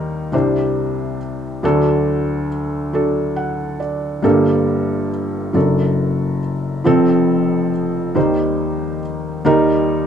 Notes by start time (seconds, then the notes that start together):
Already playing: D#2 D#3 G3 D#4 A#4
0.32 C2 C3 G3 D4 C5
1.63 D2 D3 F#3 D4 A4
2.93 F#3 D4 A4
3.36 F#5
3.80 D5
4.22 G1 G2 G3 A#3 A4
5.53 F#1 F#2 F#3 D4 A4
6.84 F1 F2 F3 C4 A4
8.15 D#2 D#3 G3 D#4 C5
9.45 D#2 D#3 G3 D#4 A#4